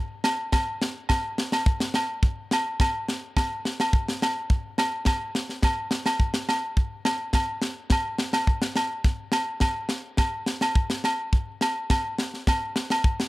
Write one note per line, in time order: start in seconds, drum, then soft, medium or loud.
0.24 snare medium
0.24 low agogo medium
0.52 kick medium
0.52 snare medium
0.52 low agogo medium
0.82 snare medium
1.09 kick medium
1.09 snare medium
1.09 low agogo medium
1.38 snare medium
1.52 snare medium
1.52 low agogo medium
1.66 kick loud
1.80 snare medium
1.94 snare medium
1.94 low agogo medium
2.23 kick medium
2.51 snare medium
2.51 low agogo medium
2.80 kick medium
2.80 snare medium
2.80 low agogo medium
3.08 snare medium
3.37 kick medium
3.37 snare medium
3.37 low agogo medium
3.65 snare medium
3.80 snare medium
3.80 low agogo medium
3.93 kick medium
4.08 snare medium
4.22 snare medium
4.22 low agogo medium
4.50 kick medium
4.78 snare medium
4.78 low agogo medium
5.05 kick medium
5.05 snare medium
5.05 low agogo medium
5.35 snare medium
5.49 snare soft
5.62 kick medium
5.62 snare medium
5.62 low agogo medium
5.91 snare medium
6.06 snare medium
6.06 low agogo medium
6.20 kick medium
6.34 snare medium
6.49 snare medium
6.49 low agogo medium
6.77 kick medium
7.05 snare medium
7.05 low agogo medium
7.33 kick medium
7.33 snare medium
7.33 low agogo medium
7.62 snare medium
7.90 kick medium
7.90 snare medium
7.90 low agogo medium
8.18 snare medium
8.33 snare medium
8.33 low agogo medium
8.47 kick medium
8.62 snare medium
8.76 snare medium
8.76 low agogo medium
9.04 kick medium
9.04 snare soft
9.32 snare medium
9.32 low agogo medium
9.60 kick medium
9.60 snare medium
9.60 low agogo medium
9.89 snare medium
10.17 kick medium
10.17 snare medium
10.17 low agogo medium
10.46 snare medium
10.61 snare medium
10.61 low agogo medium
10.75 kick medium
10.90 snare medium
11.04 snare medium
11.04 low agogo medium
11.33 kick medium
11.61 snare medium
11.61 low agogo medium
11.90 kick medium
11.90 snare medium
11.90 low agogo medium
12.18 snare medium
12.34 snare soft
12.47 kick medium
12.47 snare medium
12.47 low agogo medium
12.76 snare medium
12.90 snare medium
12.90 low agogo medium
13.04 kick medium
13.20 snare medium